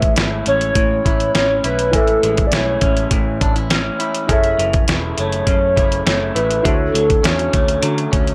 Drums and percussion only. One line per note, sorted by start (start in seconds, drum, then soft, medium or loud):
0.02 kick medium
0.02 closed hi-hat soft
0.16 snare loud
0.16 closed hi-hat medium
0.46 closed hi-hat medium
0.61 closed hi-hat soft
0.75 kick medium
0.75 closed hi-hat medium
1.06 kick medium
1.06 closed hi-hat medium
1.20 closed hi-hat soft
1.35 snare loud
1.35 closed hi-hat medium
1.64 closed hi-hat medium
1.79 closed hi-hat medium
1.93 kick medium
1.93 closed hi-hat medium
2.07 closed hi-hat soft
2.23 closed hi-hat medium
2.37 kick medium
2.37 closed hi-hat medium
2.52 snare loud
2.52 closed hi-hat medium
2.81 kick medium
2.81 closed hi-hat medium
2.97 closed hi-hat medium
3.11 kick medium
3.11 closed hi-hat loud
3.41 kick medium
3.41 closed hi-hat medium
3.56 closed hi-hat soft
3.70 snare loud
3.70 closed hi-hat medium
4.00 closed hi-hat medium
4.15 closed hi-hat medium
4.29 kick loud
4.29 closed hi-hat medium
4.44 closed hi-hat soft
4.59 closed hi-hat medium
4.73 kick medium
4.73 closed hi-hat soft
4.88 snare medium
4.88 closed hi-hat loud
5.18 closed hi-hat medium
5.32 closed hi-hat soft
5.47 kick medium
5.47 closed hi-hat medium
5.77 kick medium
5.77 closed hi-hat medium
5.92 closed hi-hat medium
6.07 snare loud
6.07 closed hi-hat medium
6.36 closed hi-hat medium
6.51 closed hi-hat medium
6.65 kick loud
6.65 closed hi-hat medium
6.95 closed hi-hat medium
7.10 kick medium
7.10 closed hi-hat medium
7.24 snare medium
7.24 closed hi-hat medium
7.39 closed hi-hat soft
7.53 kick medium
7.53 closed hi-hat medium
7.68 closed hi-hat medium
7.83 closed hi-hat medium
7.98 closed hi-hat soft
8.13 kick medium
8.13 closed hi-hat medium
8.27 closed hi-hat soft